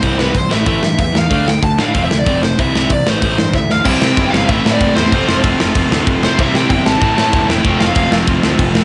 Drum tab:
CC |--------|--------|--------|x-x-x-x-|
HH |o-o-o-o-|o-o-o-o-|o-o-o---|--------|
SD |-o-o-o-o|-o-o-o-o|-o-o-ooo|-o-o-o-o|
BD |o-o-o-o-|o-o-o-o-|o-o-o-o-|o-o-o-o-|

CC |x-x-x-x-|x-x-x-x-|x-x-x-x-|
HH |--------|--------|--------|
SD |-o-o-o-o|-o-o-o-o|-o-o-o-o|
BD |o-o-o-o-|o-o-o-o-|o-o-o-o-|